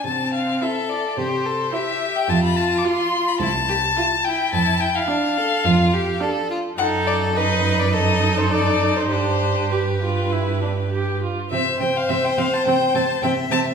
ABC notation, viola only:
X:1
M:4/4
L:1/8
Q:1/4=106
K:Am
V:1 name="Viola"
z2 E2 z2 E2 | [K:Ddor] z2 F2 z2 E2 | z2 D2 z2 D2 | _E2 E2 E4 |
D2 G F E D G F | C C C C C C C C |]